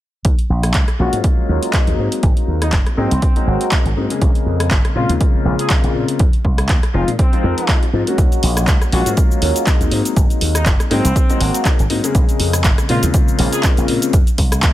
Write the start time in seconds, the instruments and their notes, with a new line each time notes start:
0.25 slap bass D#2, kick, closed hi-hat
0.39 closed hi-hat
0.50 slap bass A#1
0.63 cross-stick, closed hi-hat
0.74 slap bass C#2, kick, clap, closed hi-hat
0.88 cross-stick, closed hi-hat
0.99 slap bass A#1, grand piano F#3 G#3 A#3 C#4 F4, horn section F#4
1.13 slap bass G#2, closed hi-hat
1.24 grand piano F#3 G#3 A#3 C#4, kick, closed hi-hat
1.38 muted slap bass stroke
1.49 slap bass D#2, grand piano F#3 G#3 A#3 C#4 F4
1.63 closed hi-hat
1.72 grand piano F#3 G#3 A#3 D#4, kick, clap, closed hi-hat
1.87 slap bass D#2, closed hi-hat
1.98 slap bass G#2
2.12 closed hi-hat
2.23 slap bass G#1, kick, closed hi-hat
2.37 closed hi-hat
2.48 slap bass D#2
2.62 horn section D#4, cross-stick, closed hi-hat
2.72 slap bass F#1, kick, clap, closed hi-hat
2.86 cross-stick, closed hi-hat
2.97 slap bass G#2, grand piano F#3 G#3 A#3 C4 D#4, horn section C4
3.11 slap bass C2, closed hi-hat
3.22 kick, closed hi-hat
3.36 grand piano F#3 G#3 A#3 C4 D#4, muted slap bass stroke, closed hi-hat
3.47 slap bass G#1, grand piano F#3 G#3 A#3 C4 F#4
3.61 closed hi-hat
3.71 grand piano F#3 G#3 A#3 C4 D#4, muted slap bass stroke, kick, clap, closed hi-hat
3.85 slap bass G#1, closed hi-hat
3.96 slap bass G#2, grand piano F#3 G#3 A#3 C4 D#4
4.10 grand piano C#3 G#3 A#3 C4 G#4, closed hi-hat
4.21 slap bass A#1, kick, closed hi-hat
4.35 closed hi-hat
4.46 slap bass F2
4.60 cross-stick, closed hi-hat
4.71 slap bass G#1, kick, clap, closed hi-hat
4.85 cross-stick, closed hi-hat
4.95 slap bass A#2, grand piano C#3 G#3 A#3 C4 F4, horn section F4
5.09 slap bass D#2, closed hi-hat
5.20 grand piano C#3 G#3 A#3 C4 F4, kick, closed hi-hat
5.34 muted slap bass stroke
5.45 slap bass A#1, grand piano C#3 G#3 A#3 C4 F4
5.59 horn section G#4, closed hi-hat
5.70 grand piano C#3 G#3 A#3 C4 F4, kick, clap, closed hi-hat
5.84 slap bass A#1, closed hi-hat
5.95 slap bass A#2
6.08 closed hi-hat
6.19 slap bass F2, kick, closed hi-hat
6.33 closed hi-hat
6.45 slap bass C2, kick
6.58 cross-stick, closed hi-hat
6.69 slap bass D#2, kick, clap, closed hi-hat
6.83 cross-stick, closed hi-hat
6.94 slap bass F1, grand piano F3 G#3 C4 D#4 F4, horn section F4
7.08 slap bass A#2, closed hi-hat
7.19 horn section C4, kick, closed hi-hat
7.33 grand piano F3 G#3 C4 D#4 F4, muted slap bass stroke, closed hi-hat
7.43 slap bass F2, grand piano F3 G#3 C4 D#4 A#4
7.58 closed hi-hat
7.68 grand piano F3 C4 F4, kick, clap, closed hi-hat
7.83 closed hi-hat
7.93 slap bass G#2, grand piano F3 G#3 C4 D#4 F4
8.06 grand piano F#3 G#3 A#3 C#4 F#4, closed hi-hat
8.18 slap bass D#2, kick, closed hi-hat, cabasa
8.32 closed hi-hat, cabasa
8.43 slap bass A#1, open hi-hat
8.57 cross-stick, closed hi-hat, cabasa
8.67 slap bass C#2, kick, clap, closed hi-hat, cabasa
8.81 cross-stick, closed hi-hat, cabasa
8.92 slap bass A#1, grand piano F#3 G#3 A#3 C#4 F4, horn section F#4, open hi-hat
9.06 slap bass G#2, closed hi-hat, cabasa
9.17 grand piano F#3 G#3 A#3 C#4 F4, kick, closed hi-hat, cabasa
9.31 muted slap bass stroke, cabasa
9.42 slap bass D#2, grand piano F#3 G#3 A#3 C#4 F4, open hi-hat
9.56 closed hi-hat, cabasa
9.66 grand piano F#3 G#3 A#3, kick, clap, closed hi-hat, cabasa
9.81 slap bass D#2, closed hi-hat, cabasa
9.92 slap bass G#2, open hi-hat
10.05 closed hi-hat, cabasa
10.16 slap bass G#1, kick, closed hi-hat, cabasa
10.30 closed hi-hat, cabasa
10.41 slap bass D#2, open hi-hat
10.55 horn section D#4, cross-stick, closed hi-hat, cabasa
10.66 slap bass F#1, kick, clap, closed hi-hat, cabasa
10.80 cross-stick, closed hi-hat, cabasa
10.90 slap bass G#2, grand piano F#3 G#3 A#3 C4 D#4, horn section C4, open hi-hat
11.05 slap bass C2, closed hi-hat, cabasa
11.16 kick, closed hi-hat, cabasa
11.29 grand piano F#3 G#3 A#3 C4 D#4, muted slap bass stroke, closed hi-hat, cabasa
11.40 slap bass G#1, grand piano F#3 G#3 A#3 C4 F#4, open hi-hat
11.54 closed hi-hat, cabasa
11.65 grand piano F#3 G#3 D#4, muted slap bass stroke, kick, clap, closed hi-hat, cabasa
11.79 slap bass G#1, closed hi-hat, cabasa
11.90 slap bass G#2, grand piano F#3 G#3 A#3 C4 D#4, open hi-hat
12.03 grand piano C#3 G#3 A#3 C4 G#4, closed hi-hat, cabasa
12.15 slap bass A#1, kick, closed hi-hat, cabasa
12.29 closed hi-hat, cabasa
12.40 slap bass F2, open hi-hat
12.53 cross-stick, closed hi-hat, cabasa
12.64 slap bass G#1, kick, clap, closed hi-hat, cabasa
12.78 cross-stick, closed hi-hat, cabasa
12.89 slap bass A#2, grand piano C#3 G#3 A#3 C4 F4, horn section F4, open hi-hat
13.03 slap bass D#2, closed hi-hat, cabasa
13.13 grand piano C#3 G#3 A#3 C4 F4, kick, closed hi-hat, cabasa
13.28 muted slap bass stroke, cabasa
13.38 slap bass A#1, grand piano C#3 G#3 A#3 C4 F4, open hi-hat
13.53 horn section G#4, closed hi-hat, cabasa
13.63 grand piano C#3 G#3 A#3 C4 F4, kick, clap, closed hi-hat, cabasa
13.77 slap bass A#1, closed hi-hat, cabasa
13.88 slap bass A#2, open hi-hat
14.02 closed hi-hat, cabasa
14.13 slap bass F2, kick, closed hi-hat, cabasa
14.27 muted slap bass stroke, closed hi-hat, cabasa
14.38 slap bass C2, kick, open hi-hat
14.52 cross-stick, closed hi-hat, cabasa
14.63 slap bass D#2, kick, clap, closed hi-hat, cabasa